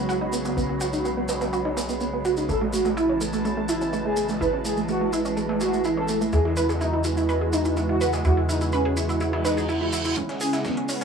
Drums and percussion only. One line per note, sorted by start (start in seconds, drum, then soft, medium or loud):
0.09 closed hi-hat medium
0.09 maracas soft
0.33 closed hi-hat medium
0.33 maracas medium
0.45 snare soft
0.45 maracas soft
0.57 closed hi-hat medium
0.57 maracas soft
0.69 closed hi-hat soft
0.81 closed hi-hat medium
0.81 maracas medium
0.93 maracas soft
1.05 closed hi-hat medium
1.05 maracas soft
1.17 closed hi-hat soft
1.29 snare loud
1.29 closed hi-hat medium
1.29 maracas medium
1.41 snare loud
1.41 closed hi-hat medium
1.41 maracas medium
1.53 closed hi-hat medium
1.53 maracas soft
1.65 snare medium
1.77 snare loud
1.77 closed hi-hat medium
1.77 maracas medium
1.89 maracas medium
2.00 closed hi-hat medium
2.00 maracas soft
2.25 closed hi-hat medium
2.25 maracas medium
2.37 maracas soft
2.49 closed hi-hat medium
2.49 maracas soft
2.61 snare soft
2.73 closed hi-hat medium
2.73 maracas medium
2.85 snare medium
2.85 maracas soft
2.97 closed hi-hat medium
2.97 maracas soft
3.21 closed hi-hat medium
3.21 maracas medium
3.33 maracas soft
3.45 closed hi-hat medium
3.45 maracas soft
3.69 closed hi-hat medium
3.69 maracas medium
3.82 maracas soft
3.93 closed hi-hat medium
3.93 maracas soft
4.17 closed hi-hat medium
4.17 maracas medium
4.29 snare soft
4.29 maracas soft
4.41 closed hi-hat medium
4.41 maracas soft
4.53 closed hi-hat soft
4.65 closed hi-hat medium
4.65 maracas medium
4.77 maracas soft
4.89 closed hi-hat medium
4.89 maracas soft
5.01 closed hi-hat soft
5.13 closed hi-hat medium
5.13 maracas medium
5.25 maracas soft
5.37 closed hi-hat medium
5.37 maracas soft
5.49 snare medium
5.61 snare soft
5.61 closed hi-hat medium
5.61 maracas medium
5.73 maracas soft
5.84 closed hi-hat medium
5.84 maracas soft
6.08 closed hi-hat medium
6.08 maracas medium
6.21 maracas soft
6.33 closed hi-hat medium
6.33 maracas soft
6.45 snare soft
6.56 closed hi-hat medium
6.56 maracas medium
6.69 snare medium
6.69 maracas soft
6.81 closed hi-hat medium
6.81 maracas soft
7.04 closed hi-hat medium
7.04 maracas medium
7.17 maracas medium
7.29 closed hi-hat medium
7.29 maracas soft
7.53 closed hi-hat medium
7.53 maracas medium
7.65 maracas soft
7.77 closed hi-hat medium
7.77 maracas soft
8.01 closed hi-hat medium
8.01 maracas medium
8.13 snare soft
8.13 maracas soft
8.25 closed hi-hat medium
8.25 maracas soft
8.37 closed hi-hat soft
8.49 closed hi-hat medium
8.49 maracas medium
8.61 maracas soft
8.72 closed hi-hat medium
8.72 maracas soft
8.85 closed hi-hat soft
8.97 closed hi-hat medium
8.97 maracas medium
9.09 maracas soft
9.20 closed hi-hat medium
9.20 maracas soft
9.33 snare medium
9.45 snare soft
9.45 closed hi-hat medium
9.45 maracas medium
9.57 maracas soft
9.69 closed hi-hat medium
9.69 maracas soft
9.93 closed hi-hat medium
9.93 maracas medium
10.05 maracas soft
10.17 kick loud
10.17 closed hi-hat medium
10.17 maracas soft
10.29 snare soft
10.29 closed hi-hat medium
10.41 closed hi-hat medium
10.41 open hi-hat loud
10.41 maracas medium
10.53 snare medium
10.53 closed hi-hat medium
10.53 maracas medium
10.65 kick loud
10.65 snare loud
10.65 closed hi-hat medium
10.65 maracas soft
10.77 closed hi-hat medium
10.89 closed hi-hat medium
10.89 open hi-hat loud
10.89 maracas medium